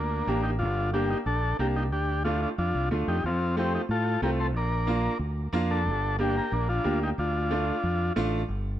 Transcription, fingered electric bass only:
Already playing: D2
0.27 A1
0.60 G1
1.26 A#1
1.59 C2
1.92 D2
2.58 F2
2.75 C2
2.91 D2
3.08 F2
3.24 F2
3.89 A2
4.22 C2
4.54 A#1
5.19 D2
5.53 F2
5.86 G1
6.52 A#1
6.85 D2
7.18 D2
7.83 F2
8.16 A1
8.48 G1

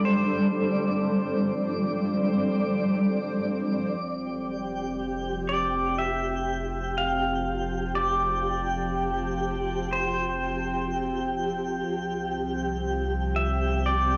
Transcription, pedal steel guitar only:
0.05 C5
5.49 D5
5.99 E5
6.98 F5
7.95 D5
9.93 C5
13.36 E5
13.86 D5

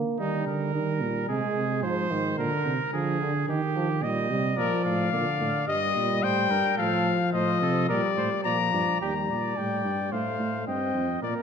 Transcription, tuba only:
0.20 D#3
0.47 D3
0.74 D#3
1.02 A#2
1.29 C3
1.56 C3
1.83 G#2
2.11 G#2
2.38 A#2
2.66 C3
2.93 D3
3.48 D#3
4.03 A#2
4.30 C3
4.58 A#2
4.86 A2
5.13 A#2
5.41 A2
5.68 G2
5.96 A#2
6.23 A2
6.51 G2
6.78 A2
7.34 A2
7.61 C3
7.89 A#2
8.17 A2
8.45 A#2
8.73 G2
9.01 D#2
9.30 A#2
9.57 A2
9.85 G2
10.12 A2
10.40 A2
10.68 G2
10.95 F2
11.22 A#2

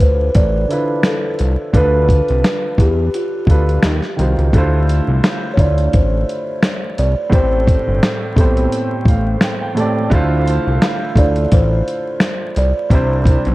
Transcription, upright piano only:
Already playing: D3 D4 E4 F4 B4
0.68 D3 D4 E4 F4
0.73 B4
1.73 D3 D4 F4 A4
1.77 B4
3.46 D3 D4 F4 A4
3.51 B4
4.17 D#3 D#4 F4 F#4
4.21 C5
4.53 D3 A3 E4 F4
4.58 C5
5.56 D3 A3 E4 F4
5.60 C5
7.30 A2 A3 C4 G4
7.35 C5
8.36 A2 A3 B3 G4
8.40 C5
8.45 C4
9.08 F5
9.44 G5
9.62 G5
9.75 A2 A3 C4 G4 A5
9.80 D5
10.10 D3 A3 E4 F4
10.15 C5
11.15 D3 A3 E4 F4
11.19 C5
12.90 C3 G3 D4 E4
12.95 C5

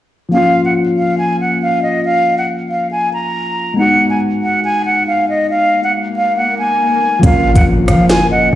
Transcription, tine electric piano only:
0.29 F3 A#3
0.34 C#4 F4
3.74 G#3 B3
3.79 D#4 F#4
7.19 F3 A#3 C#4
7.25 F4 A#4

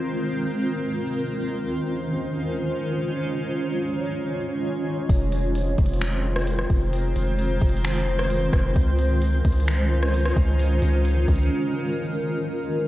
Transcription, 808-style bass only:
5.10 F1
5.78 F1
6.70 F1
7.16 F1
7.62 F1
8.53 F1
8.76 C#2
9.45 C#2
10.36 C#2
10.82 C#2
11.28 C#2

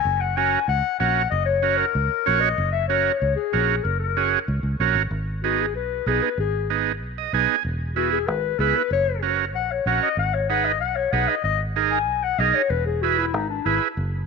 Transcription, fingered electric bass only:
0.05 F#1
0.68 C#2
1.00 A#1
1.32 F#1
1.95 C#2
2.27 A#1
2.58 F#1
3.22 C#2
3.54 A#1
3.85 F#1
4.48 C#2
4.63 C#2
4.80 A#1
4.95 G#1
5.11 G#1
5.75 B1
6.06 B1
6.38 G#1
7.01 B1
7.33 B1
7.64 E1
8.28 G#1
8.59 C#2
8.91 F#1
9.54 A#1
9.86 A#1
10.17 G#1
10.81 B1
11.13 B1
11.44 G#1
12.07 B1
12.38 B1
12.70 E1
13.34 G#1
13.65 G#1
13.97 F#1

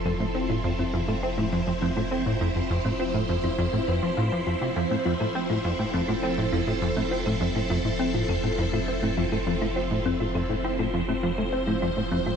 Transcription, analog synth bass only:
0.05 F2
0.20 A2
0.35 C4
0.49 A2
0.64 F2
0.79 F2
0.93 F2
1.08 A2
1.23 C4
1.38 A2
1.52 F2
1.67 F2
1.82 F2
1.97 A2
2.11 C4
2.26 A2
2.41 F2
2.56 F2
2.70 F2
2.85 A2
3.00 C4
3.14 A2
3.29 F2
3.44 F2
3.58 F2
3.73 A2
3.88 F2
4.03 F3
4.17 A2
4.32 F3
4.47 F2
4.61 C3
4.76 F2
4.91 A2
5.06 F2
5.21 A2
5.35 C4
5.50 A2
5.64 F2
5.79 A2
5.94 F2
6.08 A2
6.23 C4
6.38 A2
6.52 F2
6.67 A2
6.82 F2
6.97 A2
7.11 C4
7.26 A2
7.41 F2
7.55 A2
7.70 F2
7.85 A2
7.99 C4
8.14 A2
8.29 F2
8.44 A2
8.58 F2
8.73 A2
8.88 C4
9.02 A2
9.17 F2
9.32 A2
9.47 F2
9.61 A2
9.76 C4
9.91 A2
10.05 F2
10.20 A2
10.35 F2
10.50 A2
10.64 C4
10.79 A2
10.94 F2
11.08 A2
11.23 F2
11.38 A2
11.53 C4
11.67 A2
11.82 F2
11.97 A2
12.12 F2
12.26 A2

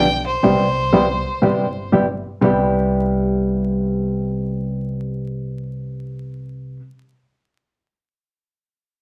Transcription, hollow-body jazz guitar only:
0.43 C3 G3 B3 E4 G4
0.93 C3 G3 B3 E4 G4
1.42 C3 G3 B3 E4 G4
1.92 C3 G3 B3 E4 G4
2.41 C3 G3 B3 E4 G4

